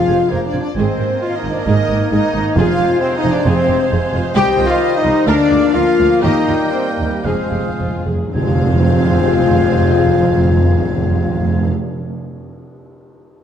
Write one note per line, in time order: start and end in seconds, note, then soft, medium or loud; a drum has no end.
0.00 0.50 F2 loud
0.00 0.55 F3 medium
0.00 0.54 G#3 medium
0.00 0.31 F4 loud
0.00 0.32 F4 medium
0.00 0.30 G#4 medium
0.00 2.54 C5 medium
0.00 0.30 F5 medium
0.00 0.31 F5 medium
0.00 0.57 F5 medium
0.08 0.17 F1 medium
0.08 0.16 F2 medium
0.08 0.17 G4 medium
0.08 0.19 C5 medium
0.08 0.18 G#5 medium
0.30 0.40 F1 medium
0.30 0.39 F2 medium
0.30 0.47 A#3 medium
0.30 0.46 A#3 medium
0.30 0.40 G#4 medium
0.30 0.46 A#4 medium
0.30 0.47 A#4 medium
0.30 0.41 C5 medium
0.30 0.41 G#5 medium
0.46 0.60 D4 medium
0.46 0.60 D5 medium
0.46 0.61 D5 medium
0.53 0.62 F1 medium
0.53 0.62 F2 medium
0.53 0.62 F4 medium
0.53 0.63 C5 medium
0.53 0.63 G#5 medium
0.61 0.68 D4 medium
0.61 0.67 D5 medium
0.61 0.77 D5 medium
0.75 0.84 G#1 medium
0.75 0.85 G#2 medium
0.75 2.53 D#3 medium
0.75 2.53 A#3 medium
0.75 1.20 C4 medium
0.75 1.21 C4 loud
0.75 0.99 G#4 medium
0.75 2.52 A#4 medium
0.75 2.54 A#4 medium
0.75 1.22 C5 medium
0.75 2.53 D#5 medium
0.75 4.31 G#5 medium
0.99 1.07 G#1 medium
0.99 1.07 G#2 medium
0.99 1.08 G4 medium
1.21 1.36 F4 loud
1.21 1.37 F4 loud
1.21 1.37 F5 medium
1.21 1.38 F5 medium
1.37 1.51 D#4 medium
1.37 1.53 D#4 medium
1.37 1.52 D#5 medium
1.44 1.52 G#1 medium
1.44 1.53 G#2 medium
1.44 1.54 D#4 medium
1.52 1.68 D4 medium
1.52 1.67 D4 loud
1.52 1.67 D5 medium
1.52 1.58 D5 medium
1.66 1.75 G#1 medium
1.66 1.75 G#2 medium
1.66 2.10 D#4 medium
1.66 2.10 D#4 loud
1.66 1.88 G#4 medium
1.66 2.09 D#5 medium
1.66 2.11 D#5 loud
1.90 1.98 G#1 medium
1.90 1.98 G#2 medium
1.90 1.99 G4 medium
2.11 2.19 G#1 medium
2.11 2.20 G#2 medium
2.11 2.56 D#4 loud
2.11 2.21 G#4 medium
2.11 2.55 D#5 medium
2.11 2.56 D#5 loud
2.34 2.42 G#1 medium
2.34 2.42 G#2 medium
2.34 2.43 D#4 medium
2.56 2.64 F1 loud
2.56 2.64 F2 loud
2.56 3.20 F2 loud
2.56 4.33 C3 medium
2.56 4.36 G#3 medium
2.56 3.01 F4 loud
2.56 3.03 F4 loud
2.56 2.78 G#4 loud
2.56 5.23 C5 medium
2.56 4.32 C5 medium
2.56 5.24 C5 medium
2.56 4.32 F5 medium
2.56 3.00 F5 loud
2.79 2.87 F1 medium
2.79 2.87 F2 medium
2.79 2.87 G4 medium
3.01 3.16 C4 loud
3.01 3.15 C4 loud
3.01 3.16 C5 medium
3.01 3.16 C5 loud
3.16 3.33 D#4 loud
3.16 3.32 D#4 loud
3.16 3.31 D#5 loud
3.23 3.33 F1 medium
3.23 3.31 F2 medium
3.23 3.31 F4 medium
3.31 3.45 D4 medium
3.31 3.47 D4 loud
3.31 3.46 D5 medium
3.46 3.54 F1 loud
3.46 3.54 F2 loud
3.46 3.90 C4 loud
3.46 3.67 G#4 loud
3.46 3.90 C5 medium
3.46 3.91 C5 loud
3.68 3.77 F1 medium
3.68 3.76 F2 medium
3.68 3.76 G4 medium
3.90 4.00 F1 medium
3.90 3.99 F2 medium
3.90 3.98 G#4 medium
4.13 4.21 F1 medium
4.13 4.21 F2 medium
4.13 4.21 F4 medium
4.35 4.44 C2 loud
4.35 4.45 C2 loud
4.35 5.26 D#3 loud
4.35 5.28 G3 loud
4.35 4.57 G4 loud
4.35 4.49 G4 loud
4.35 4.64 G4 loud
4.35 5.24 C5 loud
4.35 5.26 D#5 medium
4.35 5.29 D#5 loud
4.35 4.63 G5 loud
4.35 4.64 G5 loud
4.59 4.67 C2 medium
4.59 4.67 F4 medium
4.65 4.79 F4 loud
4.65 4.96 F4 loud
4.65 4.96 F5 loud
4.65 4.97 F5 loud
4.96 5.27 D#4 loud
4.96 5.27 D#5 loud
4.96 5.28 D#5 loud
5.04 5.12 C2 medium
5.04 5.13 D#4 medium
5.26 5.35 D2 loud
5.26 5.36 D2 loud
5.26 6.23 F3 medium
5.26 7.22 A#3 loud
5.26 5.74 D4 loud
5.26 5.74 A#4 loud
5.26 5.49 A#4 loud
5.26 5.74 D5 loud
5.26 5.73 D5 loud
5.26 6.21 F5 medium
5.26 5.73 F5 medium
5.51 5.59 D2 medium
5.51 5.60 D2 medium
5.51 5.59 G#4 medium
5.73 5.82 D2 medium
5.73 5.83 D2 medium
5.73 6.23 F4 loud
5.73 6.24 F4 loud
5.73 5.83 A#4 medium
5.73 6.22 A#4 loud
5.73 6.23 F5 loud
5.73 6.24 F5 medium
5.73 6.23 F5 loud
5.98 6.06 D2 medium
5.98 6.08 D2 medium
5.98 6.07 F4 medium
6.22 6.31 D#2 loud
6.22 6.33 D#2 loud
6.22 7.26 G3 medium
6.22 6.72 D#4 loud
6.22 6.46 G4 loud
6.22 7.27 A#4 medium
6.22 6.72 D#5 loud
6.22 7.25 D#5 medium
6.22 7.26 G5 medium
6.22 7.25 G5 medium
6.48 6.56 D#2 medium
6.48 6.57 D#2 medium
6.48 6.56 F4 medium
6.72 6.89 C4 medium
6.72 6.90 C4 loud
6.72 6.79 C5 medium
6.72 6.90 C5 loud
6.89 7.08 A#3 medium
6.89 6.96 A#4 medium
6.89 7.08 A#4 medium
6.98 7.06 D#2 medium
6.98 7.08 D#2 medium
6.98 7.07 D#4 medium
7.06 7.24 G3 medium
7.06 7.26 G3 medium
7.06 7.25 G4 medium
7.06 7.14 G4 medium
7.24 7.34 F1 medium
7.24 7.33 F2 medium
7.24 7.32 F2 soft
7.24 8.07 F3 medium
7.24 8.05 G#3 medium
7.24 8.07 C4 medium
7.24 8.05 G#4 medium
7.24 8.07 G#4 medium
7.24 7.50 G#4 medium
7.24 8.07 C5 medium
7.24 8.10 C5 medium
7.24 8.07 F5 medium
7.24 8.10 F5 medium
7.33 7.41 F2 soft
7.42 7.50 F2 soft
7.51 7.60 F1 medium
7.51 7.58 F2 soft
7.51 7.60 F2 medium
7.51 7.59 G4 medium
7.60 7.68 F2 medium
7.69 7.77 F2 medium
7.78 7.88 F1 medium
7.78 7.87 F2 medium
7.78 8.05 F4 medium
7.88 7.96 F2 medium
7.97 8.05 F2 medium
8.06 8.15 F1 medium
8.06 8.14 F2 medium
8.06 8.33 G#4 medium
8.15 8.24 F2 medium
8.25 8.33 F2 loud
8.34 11.68 F1 medium
8.34 11.68 F2 medium
8.34 8.41 F2 loud
8.34 11.68 F3 medium
8.34 11.68 G#3 medium
8.34 11.67 C4 medium
8.34 11.68 F4 loud
8.34 11.68 G#4 medium
8.34 11.68 C5 medium
8.34 11.69 C5 medium
8.34 11.68 F5 medium
8.34 11.69 F5 medium
8.34 11.68 G#5 medium
8.34 tam-tam medium
8.41 8.48 F2 medium
8.48 8.54 F2 medium
8.54 8.61 F2 medium
8.61 8.67 F2 medium
8.67 8.73 F2 medium
8.73 8.79 F2 loud
8.80 8.86 F2 medium
8.86 8.93 F2 loud
8.93 8.99 F2 medium
8.99 9.05 F2 medium
9.05 9.12 F2 medium
9.12 9.18 F2 medium
9.18 9.24 F2 medium
9.24 9.31 F2 medium
9.31 9.37 F2 medium
9.38 9.44 F2 loud
9.44 9.50 F2 medium
9.50 9.56 F2 medium
9.57 9.63 F2 medium
9.63 9.70 F2 loud
9.70 9.76 F2 medium
9.76 9.81 F2 medium
9.81 9.88 F2 medium
9.88 9.94 F2 loud
9.94 10.00 F2 medium
10.00 10.06 F2 medium
10.06 10.13 F2 medium
10.13 10.19 F2 medium
10.19 10.25 F2 medium
10.25 10.31 F2 loud
10.31 10.37 F2 medium
10.37 10.43 F2 loud
10.43 10.50 F2 medium
10.50 10.57 F2 medium
10.57 10.63 F2 medium
10.64 10.70 F2 medium
10.70 10.77 F2 medium
10.77 10.82 F2 loud
10.82 10.89 F2 medium
10.89 10.95 F2 medium
10.95 11.02 F2 medium
11.02 11.08 F2 medium
11.08 11.15 F2 medium
11.15 11.21 F2 loud
11.22 11.27 F2 medium
11.27 11.34 F2 loud
11.34 11.40 F2 medium
11.40 11.46 F2 medium
11.47 11.53 F2 medium
11.53 11.59 F2 medium
11.60 11.65 F2 medium
11.65 11.72 F2 medium